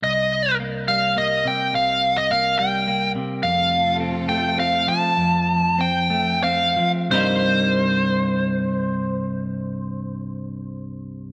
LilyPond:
<<
  \new Staff \with { instrumentName = "Lead electric guitar" } { \time 3/4 \key c \dorian \tempo 4 = 99 ees''4 r8 f''8 ees''8 g''8 | f''8. ees''16 f''8 g''4 r8 | f''4 r8 g''8 f''8 a''8~ | a''4 g''4 f''8. r16 |
c''2.~ | c''2. | }
  \new Staff \with { instrumentName = "String section" } { \time 3/4 \key c \dorian r2. | r2. | <c a f' a'>2. | r2. |
r2. | r2. | }
  \new Staff \with { instrumentName = "Clean electric guitar" } { \clef bass \time 3/4 \key c \dorian c,4 bes8 g8 bes8 c8 | c,4 bes8 g8 bes8 c8 | f,4 c'8 a8 c'8 f8 | f,4 c'8 a8 c'8 f8 |
<c, g, c g bes ees'>2.~ | <c, g, c g bes ees'>2. | }
>>